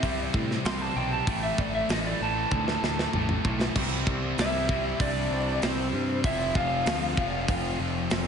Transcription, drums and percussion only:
0.03 kick medium
0.03 open hi-hat medium
0.34 kick medium
0.51 snare soft
0.65 snare loud
0.65 open hi-hat medium
1.27 kick loud
1.27 open hi-hat medium
1.58 kick medium
1.89 snare loud
1.89 open hi-hat medium
2.51 kick medium
2.51 high tom medium
2.68 snare medium
2.84 snare medium
2.99 snare medium
3.13 mid tom medium
3.29 mid tom medium
3.45 kick loud
3.61 snare medium
3.75 kick loud
3.75 crash loud
4.07 kick medium
4.38 snare loud
4.38 open hi-hat medium
4.69 kick medium
5.00 kick loud
5.00 open hi-hat medium
5.62 snare loud
5.62 open hi-hat medium
6.24 kick loud
6.24 open hi-hat medium
6.55 kick medium
6.86 snare loud
6.86 open hi-hat medium
7.17 kick medium
7.48 kick loud
7.48 open hi-hat medium
8.10 snare loud
8.10 open hi-hat medium

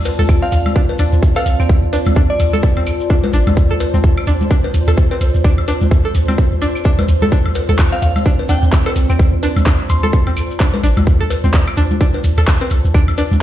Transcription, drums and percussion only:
0.05 closed hi-hat medium
0.05 cowbell medium
0.05 shekere medium
0.19 high conga medium
0.19 shekere soft
0.29 kick loud
0.29 claves medium
0.29 high woodblock soft
0.29 shekere medium
0.52 closed hi-hat medium
0.52 shekere medium
0.66 high conga medium
0.66 high woodblock medium
0.66 shekere soft
0.76 kick loud
0.76 shekere soft
0.89 cowbell medium
0.99 closed hi-hat medium
0.99 high woodblock soft
0.99 shekere medium
1.12 shekere soft
1.23 kick loud
1.23 closed hi-hat soft
1.23 shekere soft
1.35 cowbell loud
1.35 high woodblock medium
1.35 shekere soft
1.46 closed hi-hat medium
1.46 shekere medium
1.60 claves medium
1.60 shekere soft
1.69 kick loud
1.69 high woodblock soft
1.69 shekere soft
1.93 closed hi-hat medium
1.93 cowbell medium
1.93 shekere loud
2.06 high conga medium
2.06 high woodblock medium
2.06 shekere soft
2.16 kick loud
2.16 shekere medium
2.40 closed hi-hat loud
2.40 high woodblock soft
2.40 shekere medium
2.53 high conga medium
2.53 shekere soft
2.63 kick loud
2.63 shekere medium
2.77 high woodblock medium
2.87 closed hi-hat medium
2.87 claves medium
2.87 shekere medium
3.00 shekere soft
3.10 kick loud
3.10 closed hi-hat soft
3.10 high woodblock soft
3.10 shekere medium
3.23 cowbell loud
3.23 high conga medium
3.23 shekere soft
3.33 closed hi-hat medium
3.33 shekere medium
3.47 high conga medium
3.47 high woodblock medium
3.47 shekere soft
3.57 kick loud
3.57 shekere medium
3.80 closed hi-hat loud
3.80 cowbell medium
3.80 high woodblock soft
3.80 shekere medium
3.94 high conga medium
3.94 shekere soft
4.04 kick loud
4.04 shekere medium
4.17 claves medium
4.17 high woodblock medium
4.27 closed hi-hat medium
4.27 shekere medium
4.41 high conga medium
4.41 shekere soft
4.51 kick loud
4.51 high woodblock soft
4.51 shekere medium
4.64 cowbell medium
4.74 closed hi-hat medium
4.74 shekere medium
4.88 high woodblock medium
4.88 shekere soft
4.97 kick loud
4.97 closed hi-hat soft
4.97 shekere medium
5.11 cowbell medium
5.11 shekere soft
5.21 closed hi-hat loud
5.21 high woodblock soft
5.21 shekere medium
5.34 shekere soft
5.44 kick loud
5.44 claves medium
5.44 shekere medium
5.58 high woodblock medium
5.68 closed hi-hat loud
5.68 cowbell medium
5.68 shekere medium
5.81 high conga medium
5.81 shekere soft
5.91 kick loud
5.91 high woodblock soft
5.91 shekere medium
6.15 closed hi-hat medium
6.15 shekere medium
6.28 high conga medium
6.28 high woodblock medium
6.28 shekere soft
6.38 kick loud
6.38 shekere soft
6.62 closed hi-hat medium
6.62 high woodblock soft
6.62 shekere medium
6.75 claves medium
6.75 shekere soft
6.84 kick loud
6.84 closed hi-hat soft
6.84 shekere medium
6.99 cowbell medium
6.99 high conga medium
6.99 high woodblock medium
6.99 shekere soft
7.08 closed hi-hat medium
7.08 shekere loud
7.22 high conga medium
7.22 shekere soft
7.32 kick loud
7.32 shekere medium
7.46 high woodblock medium
7.55 closed hi-hat medium
7.55 cowbell medium
7.55 shekere loud
7.69 high conga medium
7.69 shekere soft
7.79 kick loud
7.79 clap medium
7.79 claves medium
7.79 high woodblock soft
7.79 shekere medium
8.02 closed hi-hat medium
8.02 shekere medium
8.16 high conga medium
8.16 high woodblock medium
8.16 shekere soft
8.26 kick loud
8.26 shekere medium
8.39 cowbell medium
8.49 closed hi-hat medium
8.49 high woodblock soft
8.49 shekere medium
8.63 shekere soft
8.72 kick loud
8.72 clap medium
8.72 closed hi-hat soft
8.72 shekere medium
8.86 cowbell medium
8.86 high woodblock medium
8.86 shekere soft
8.96 closed hi-hat medium
8.96 shekere medium
9.09 claves medium
9.09 shekere soft
9.19 kick loud
9.19 high woodblock soft
9.19 shekere soft
9.43 closed hi-hat medium
9.43 cowbell medium
9.43 shekere medium
9.56 high conga medium
9.56 high woodblock medium
9.56 shekere soft
9.66 kick loud
9.66 clap medium
9.66 shekere medium
9.89 closed hi-hat medium
9.89 high woodblock soft
9.89 shekere medium
10.03 high conga medium
10.03 shekere soft
10.13 kick loud
10.13 shekere medium
10.27 high woodblock medium
10.37 closed hi-hat medium
10.37 claves medium
10.37 shekere medium
10.51 shekere soft
10.60 kick loud
10.60 clap medium
10.60 closed hi-hat soft
10.60 high woodblock soft
10.60 shekere soft
10.74 cowbell medium
10.74 high conga medium
10.74 shekere soft
10.84 closed hi-hat medium
10.84 shekere medium
10.97 high conga medium
10.97 high woodblock medium
10.97 shekere soft
11.07 kick loud
11.07 shekere soft
11.30 closed hi-hat medium
11.30 cowbell medium
11.30 high woodblock soft
11.30 shekere medium
11.44 high conga medium
11.44 shekere soft
11.54 kick loud
11.54 clap medium
11.54 shekere soft
11.67 claves medium
11.67 high woodblock medium
11.77 closed hi-hat medium
11.77 shekere medium
11.91 high conga medium
11.91 shekere soft
12.01 kick loud
12.01 high woodblock soft
12.01 shekere medium
12.14 cowbell medium
12.24 closed hi-hat medium
12.24 shekere medium
12.38 high woodblock medium
12.38 shekere soft
12.48 kick loud
12.48 clap medium
12.48 closed hi-hat soft
12.48 shekere soft
12.61 cowbell loud
12.61 shekere soft
12.70 closed hi-hat medium
12.70 high woodblock soft
12.70 shekere medium
12.85 shekere soft
12.94 kick loud
12.94 claves medium
12.94 shekere medium
13.08 high woodblock medium
13.08 shekere soft
13.18 closed hi-hat medium
13.18 cowbell medium
13.18 shekere medium
13.32 high conga medium
13.32 shekere soft

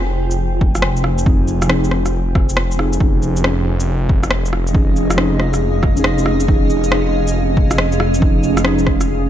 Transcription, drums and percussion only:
0.31 shaker medium
0.61 kick loud
0.75 cross-stick medium
0.75 shaker medium
0.82 cross-stick loud
0.97 shaker soft
1.04 cross-stick medium
1.18 shaker medium
1.26 kick loud
1.48 shaker soft
1.62 cross-stick medium
1.62 shaker medium
1.69 cross-stick loud
1.84 shaker soft
1.91 cross-stick medium
2.06 cross-stick soft
2.06 shaker medium
2.35 kick loud
2.35 cross-stick medium
2.49 shaker medium
2.57 cross-stick loud
2.71 shaker soft
2.79 cross-stick medium
2.93 shaker medium
3.00 kick loud
3.22 shaker soft
3.36 shaker medium
3.44 cross-stick loud
3.80 shaker medium
4.09 kick loud
4.23 cross-stick medium
4.23 shaker medium
4.31 cross-stick loud
4.45 shaker soft
4.53 cross-stick medium
4.67 shaker medium
4.75 kick loud
4.96 shaker soft
5.10 cross-stick medium
5.10 shaker medium
5.18 cross-stick loud
5.40 cross-stick medium
5.54 cross-stick soft
5.54 shaker medium
5.83 kick loud
5.83 cross-stick medium
5.97 shaker medium
6.04 cross-stick loud
6.18 shaker soft
6.26 cross-stick medium
6.40 shaker medium
6.48 kick loud
6.70 shaker soft
6.84 shaker medium
6.92 cross-stick loud
7.28 shaker medium
7.57 kick loud
7.71 cross-stick medium
7.71 shaker medium
7.78 cross-stick loud
7.92 shaker soft
8.00 cross-stick medium
8.14 shaker medium
8.22 kick loud
8.43 shaker soft
8.57 cross-stick medium
8.57 shaker medium
8.65 cross-stick loud
8.79 shaker soft
8.87 kick medium
8.87 cross-stick medium
9.01 cross-stick soft
9.01 shaker medium

